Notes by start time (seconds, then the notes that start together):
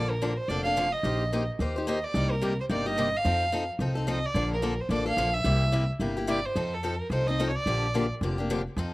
Already playing: A#1 D3 F3 A#3 D4 A4 D5
0.10 A#4
0.22 D3 F3 A#3 D4 A4
0.37 C5
0.48 F1 D3 F3 A#3 D4 A4 D5
0.63 A#3 D4 A4 F5
0.76 D3 F3 A#3 D4 A4
0.93 D#5
1.03 A#1 A#3 D#4 G4 C5
1.33 A#3 D#4 G4 C5
1.59 D#2 A#3 D#4 G4 C5
1.76 D#4 G4 C5
1.87 A#3 D#4 G4 C5 D#5
2.04 D5
2.14 C2 C3 G3 A#3 D#4 G4
2.31 A#4
2.42 C3 G3 A#3 D#4 G4
2.60 C5
2.69 G1 C3 G3 A#3 D#4 G4 D5
2.86 A#3 D#4 G4 D#5
2.98 C3 G3 A#3 D#4 G4
3.17 F5
3.25 F2 F3 C4 D#4 A4
3.52 F3 C4 D#4 A4
3.79 C2 F3 C4 D#4 A4
3.95 C4 D#4 A4
4.07 F3 C4 D#4 A4 D#5
4.25 D5
4.34 A#1 D3 F3 A#3 D4 A4
4.53 A#4
4.62 D3 F3 A#3 D4 A4
4.80 C5
4.89 A1 D3 F3 A#3 D4 A4 D5
5.06 A#3 D4 A4 F5
5.17 A#1 D3 F3 A#3 D4 A4
5.34 E5
5.44 C2 C3 G3 A#3 E4 G4
5.72 C3 G3 A#3 E4 G4
5.99 G1 C3 G3 A#3 E4 G4
6.17 A#3 E4 G4
6.27 C3 G3 A#3 E4 G4 D5
6.45 C5
6.56 F2 F3 C4 D#4 A4
6.74 A4
6.83 F3 C4 D#4 A4
7.01 A#4
7.10 C2 F3 C4 D#4 A4 C5
7.27 C4 D#4 A4 D#5
7.40 F3 C4 D#4 A4
7.49 C#5
7.56 D5
7.66 A#1 D3 F3 A#3 D4 G4
7.94 D3 F3 A#3 D4 G4
8.21 F1 D3 F3 A#3 D4 G4
8.38 A#3 D4 G4
8.50 D3 F3 A#3 D4 G4
8.77 F2 F3 C4 D#4 A4